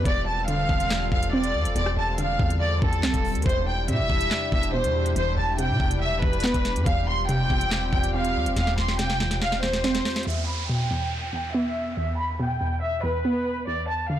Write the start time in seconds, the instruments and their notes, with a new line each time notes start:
Already playing: analog synth pad G3
0.05 808-style bass E1, synth pluck E2, analog synth pad C4 F4 A4, violin section D5, kick, closed hi-hat
0.27 violin section A5
0.48 synth pluck D3, violin section F5, closed hi-hat
0.69 808-style bass E1, synth pluck E2, kick
0.80 closed hi-hat
0.91 snare, clap
1.12 808-style bass E1, synth pluck E2, violin section F5, kick
1.23 closed hi-hat
1.33 synth pluck C4, violin section D5
1.44 closed hi-hat
1.54 808-style bass E2
1.65 808-style bass E1, closed hi-hat
1.76 808-style bass E1, synth pluck E2, violin section D5, closed hi-hat
1.86 cross-stick
1.97 808-style bass E1, violin section A5
2.18 synth pluck D3, violin section F5, closed hi-hat
2.39 808-style bass E2, synth pluck E2, kick
2.50 closed hi-hat
2.60 violin section D5
2.82 808-style bass E2, synth pluck E2, violin section A4, kick
2.93 closed hi-hat
3.03 808-style bass B1, synth pluck C4, snare, clap, closed hi-hat
3.14 808-style bass E1, kick, closed hi-hat
3.25 open hi-hat
3.35 808-style bass E2, closed hi-hat
3.42 808-style bass E1, synth pluck E2, analog synth pad D4 E4 G4, violin section C5, kick, closed hi-hat
3.49 closed hi-hat
3.67 violin section G5
3.88 808-style bass B2, synth pluck C3, violin section E5, closed hi-hat
3.99 808-style bass E1
4.10 808-style bass E1, synth pluck E2, kick
4.21 closed hi-hat
4.31 snare, clap
4.52 808-style bass E1, synth pluck E2, violin section E5, kick
4.63 closed hi-hat
4.73 synth pluck B2, violin section C5
4.84 808-style bass E2, closed hi-hat
5.06 closed hi-hat
5.16 808-style bass E1, synth pluck E2, violin section C5, closed hi-hat
5.37 808-style bass E1, violin section A5
5.58 synth pluck C3, violin section G5, closed hi-hat
5.69 808-style bass B2
5.80 808-style bass E1, synth pluck E2, kick
5.91 closed hi-hat
6.01 violin section E5
6.22 808-style bass E1, synth pluck E2, violin section B4, kick
6.33 closed hi-hat
6.40 synth pluck B3, snare, clap, closed hi-hat
6.47 closed hi-hat
6.54 808-style bass E1, kick, closed hi-hat
6.65 snare, closed hi-hat
6.76 808-style bass G2, closed hi-hat
6.86 808-style bass E1, synth pluck E2, analog synth pad G3 C4 F4 G4, violin section F5, kick, closed hi-hat
7.08 violin section C6
7.29 synth pluck C3, violin section G5, closed hi-hat
7.50 808-style bass E1, synth pluck E2, kick
7.61 closed hi-hat
7.71 snare, clap
7.92 808-style bass E1, synth pluck E2, violin section G5, kick
8.04 closed hi-hat
8.14 synth pluck C4, violin section F5
8.25 closed hi-hat
8.35 808-style bass E2
8.46 808-style bass E1, closed hi-hat
8.56 808-style bass E1, synth pluck E2, violin section F5, snare, closed hi-hat
8.67 snare
8.78 808-style bass E1, violin section C6, snare
8.88 snare
8.99 synth pluck C3, violin section G5, snare, closed hi-hat
9.10 snare
9.20 synth pluck E2, snare
9.31 snare, closed hi-hat
9.42 violin section F5, snare
9.52 snare
9.63 synth pluck E2, violin section C5, snare
9.73 snare, closed hi-hat
9.84 synth pluck C4, snare, closed hi-hat
9.95 snare, closed hi-hat
10.05 snare, open hi-hat
10.16 snare, closed hi-hat
10.23 synth pluck E2, violin section E5, closed hi-hat, downlifter
10.30 closed hi-hat
10.48 violin section B5
10.69 synth pluck B2, violin section G5
10.91 synth pluck E2
11.33 synth pluck E2, violin section G5
11.54 synth pluck B3, violin section E5
11.97 synth pluck E2, violin section E5
12.18 violin section B5
12.39 synth pluck B2, violin section G5
12.61 synth pluck E2
12.82 violin section E5
13.03 synth pluck E2, violin section B4
13.25 synth pluck B3
13.67 synth pluck E2, violin section D5
13.89 violin section A5
14.09 synth pluck D3, violin section F5